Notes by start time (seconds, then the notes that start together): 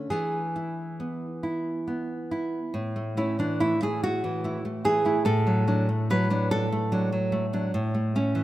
Already playing: A3 C#4
0.10 E3 B3 G#4
0.56 E4
1.00 B3
1.43 E4
1.88 B3
2.31 E4
2.74 A2
2.96 A3
3.17 A3 C#4 E4
3.39 E3 D4
3.60 A3 E4
3.82 A3 E4 G#4
4.04 F#4
4.24 E3
4.44 A3 E4
4.65 A3
4.85 E3 G#4
5.05 A3 E4
5.25 A2 A4
5.47 F#3
5.67 F#3 D4
5.89 A3
6.10 F#3 B4
6.30 F#3 D4
6.51 A4
6.72 A3
6.92 F#3 D4
7.12 F#3
7.32 A3
7.53 F#3 D4
7.74 A2
7.94 A3
8.15 A3 C#4
8.35 E3